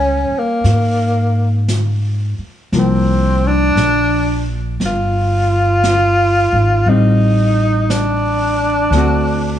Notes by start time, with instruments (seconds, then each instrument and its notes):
Already playing: upright bass C#2, hollow-body jazz guitar G3 F4, tenor saxophone C#4
0.29 muted upright bass stroke
0.38 tenor saxophone A#3
0.64 upright bass G#2, brush sweep, snare
1.68 brush sweep, snare, hi-hat pedal
2.38 muted upright bass stroke
2.72 upright bass C2, hollow-body jazz guitar F3 A#3, brush sweep, snare
2.79 tenor saxophone C4
3.47 tenor saxophone D4
3.75 upright bass A#1, brush sweep, snare, hi-hat pedal
4.80 upright bass G1, brush sweep, snare
4.86 tenor saxophone F4
5.84 brush sweep, snare, hi-hat pedal
6.52 upright bass G#1
6.86 upright bass A1, hollow-body jazz guitar G3 C4, tenor saxophone D#4, brush sweep
7.90 tenor saxophone D4, brush sweep, snare, hi-hat pedal
8.90 upright bass D2, hollow-body jazz guitar D3, brush sweep, snare
8.94 hollow-body jazz guitar A3 C4 F#4